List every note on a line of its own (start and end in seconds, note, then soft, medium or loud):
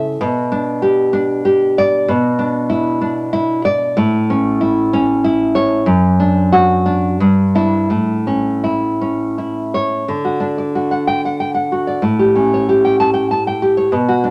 0.00 0.16 C#3 medium
0.00 0.20 E4 medium
0.00 0.20 A4 medium
0.00 0.20 E5 medium
0.21 2.06 B2 medium
0.52 1.12 D4 medium
0.82 1.44 G4 medium
1.13 2.09 D4 medium
1.45 2.09 G4 medium
1.78 2.10 D5 medium
2.08 3.93 B2 medium
2.39 3.00 D4 medium
2.70 3.32 E4 medium
3.01 3.97 D4 medium
3.33 3.65 E4 medium
3.65 3.97 D5 medium
3.97 5.83 A2 medium
4.30 4.92 C#4 medium
4.61 5.23 E4 medium
4.93 5.87 C#4 medium
5.24 5.87 E4 medium
5.55 5.87 C#5 medium
5.86 7.16 F#2 medium
6.20 6.85 D4 medium
6.52 7.07 F#4 medium
6.86 7.21 D4 medium
7.20 7.90 G2 medium
7.55 7.88 D4 medium
7.55 7.89 E4 medium
7.90 10.03 A2 medium
8.27 9.00 C#4 medium
8.64 9.37 E4 medium
9.01 10.08 C#4 medium
9.38 10.08 E4 medium
9.74 10.09 C#5 medium
10.08 11.99 D3 medium
10.25 10.74 F#4 soft
10.40 11.39 D4 medium
10.58 10.91 D5 soft
10.75 11.71 F#4 medium
10.91 11.07 F#5 medium
11.07 11.24 G5 medium
11.25 11.40 F#5 soft
11.40 11.54 G5 soft
11.55 12.03 F#5 soft
11.72 12.03 F#4 soft
11.87 12.03 D5 soft
12.02 13.87 A2 medium
12.19 12.68 G4 medium
12.36 13.29 C#4 medium
12.54 13.46 C#5 medium
12.69 13.61 G4 medium
12.85 13.00 G5 medium
13.00 13.13 A5 medium
13.14 13.31 G5 medium
13.31 13.47 A5 medium
13.47 13.93 G5 medium
13.62 13.92 G4 medium
13.77 13.92 C#5 medium
13.92 14.30 B2 medium
14.09 14.30 F#4 medium
14.24 14.30 D4 medium